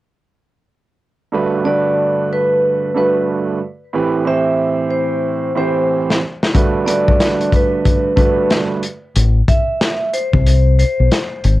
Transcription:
1.32 1.63 G2 medium
1.32 1.63 D3 medium
1.32 1.64 A3 medium
1.32 1.64 F#4 medium
1.32 1.64 B4 loud
1.64 2.88 G2 medium
1.64 2.88 D3 medium
1.64 2.88 A3 medium
1.64 2.88 F#4 medium
1.64 2.89 B4 loud
1.64 2.27 D5 medium
2.33 2.93 B4 medium
2.94 3.57 G2 medium
2.94 3.57 D3 medium
2.94 3.57 A3 medium
2.94 3.58 F#4 medium
2.94 3.58 B4 medium
2.94 3.26 B4 medium
3.93 4.23 A2 medium
3.93 4.24 E3 medium
3.93 4.25 C4 medium
3.93 4.25 G4 medium
3.93 4.25 B4 medium
4.25 5.48 A2 medium
4.25 5.49 E3 medium
4.25 5.49 C4 medium
4.25 5.49 G4 medium
4.25 5.50 C5 medium
4.25 4.88 E5 medium
4.90 5.52 C5 medium
5.55 6.17 A2 medium
5.55 6.18 E3 medium
5.55 6.18 C4 medium
5.55 6.18 G4 medium
5.55 5.87 C5 medium
5.55 6.19 C5 loud
6.10 snare medium
6.43 snare medium
6.54 6.85 G2 medium
6.54 6.85 D3 medium
6.54 6.86 A3 medium
6.54 6.86 F#4 medium
6.54 6.86 B4 loud
6.54 kick loud
6.54 closed hi-hat loud
6.86 8.09 G2 medium
6.86 8.10 D3 medium
6.86 8.10 A3 medium
6.86 8.10 F#4 medium
6.86 8.11 B4 loud
6.86 7.48 D5 medium
6.86 closed hi-hat medium
7.08 kick medium
7.20 snare loud
7.20 closed hi-hat loud
7.41 closed hi-hat soft
7.52 8.16 B4 medium
7.52 kick medium
7.52 closed hi-hat medium
7.85 kick medium
7.85 closed hi-hat medium
8.16 8.78 G2 medium
8.16 8.79 D3 medium
8.16 8.79 A3 medium
8.16 8.79 F#4 medium
8.16 8.46 B4 medium
8.16 8.80 B4 medium
8.16 kick medium
8.16 closed hi-hat medium
8.50 snare loud
8.50 closed hi-hat medium
8.83 closed hi-hat medium
9.16 9.41 A1 medium
9.16 closed hi-hat loud
9.48 10.10 E5 medium
9.48 kick loud
9.48 closed hi-hat medium
9.81 snare loud
9.81 closed hi-hat loud
10.13 10.75 C5 medium
10.13 closed hi-hat medium
10.33 10.83 C2 loud
10.33 kick medium
10.46 closed hi-hat medium
10.79 11.08 C5 medium
10.79 closed hi-hat medium
11.00 11.09 B1 medium
11.11 snare loud
11.11 closed hi-hat medium
11.44 11.60 G#1 medium
11.44 closed hi-hat medium

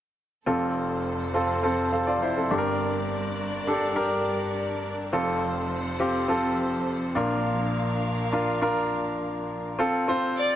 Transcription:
0.46 2.46 F1 medium
0.46 2.48 F2 medium
0.46 2.46 F2 medium
0.46 2.48 F3 medium
0.46 2.48 C4 medium
0.46 1.16 C4 medium
0.46 1.16 F4 medium
0.46 2.48 A4 medium
0.46 1.16 A4 medium
0.46 2.48 C5 medium
1.34 1.57 C4 medium
1.34 1.57 F4 soft
1.34 1.57 A4 medium
1.63 1.92 C4 medium
1.63 1.92 F4 medium
1.63 1.91 A4 medium
1.92 2.06 A4 soft
1.92 2.06 F5 soft
2.07 2.21 F4 soft
2.07 2.20 D5 medium
2.22 2.36 E4 soft
2.22 2.35 C5 soft
2.37 2.64 C4 soft
2.37 2.50 A4 soft
2.50 4.80 G1 medium
2.50 5.09 G2 medium
2.50 4.80 G2 medium
2.50 5.10 G3 medium
2.50 5.10 D4 medium
2.50 3.43 D4 medium
2.50 3.44 G4 medium
2.50 2.57 A4 medium
2.50 5.10 A#4 medium
2.50 5.10 D5 medium
2.58 3.47 A#4 medium
3.67 3.90 D4 medium
3.67 3.90 G4 soft
3.67 3.91 A4 medium
3.95 4.89 D4 medium
3.95 4.89 G4 medium
3.95 4.89 A#4 medium
5.12 7.12 F1 medium
5.12 7.14 F2 medium
5.12 7.12 F2 medium
5.12 9.74 F3 medium
5.12 7.14 C4 medium
5.12 5.82 C4 medium
5.12 5.82 F4 medium
5.12 7.14 A4 medium
5.12 5.83 A4 medium
5.12 7.14 C5 medium
6.00 6.23 C4 medium
6.00 6.23 F4 medium
6.00 6.23 G4 medium
6.28 7.16 C4 medium
6.28 7.14 F4 medium
6.28 7.16 A4 medium
7.15 9.45 A#1 medium
7.15 9.45 A#2 medium
7.15 9.76 A#2 medium
7.15 8.09 D4 medium
7.15 9.76 D4 medium
7.15 8.09 F4 medium
7.15 8.10 A#4 medium
7.15 9.76 A#4 medium
7.15 9.76 F5 medium
8.32 8.56 D4 medium
8.32 8.56 F4 medium
8.32 8.56 A#4 medium
8.61 9.55 D4 medium
8.61 9.55 F4 medium
8.61 9.55 A#4 medium
9.79 10.02 C4 medium
9.79 10.02 F4 medium
9.79 10.02 A4 medium
10.08 10.56 C4 medium
10.08 10.56 F4 medium
10.08 10.56 C5 medium
10.38 10.56 D5 medium

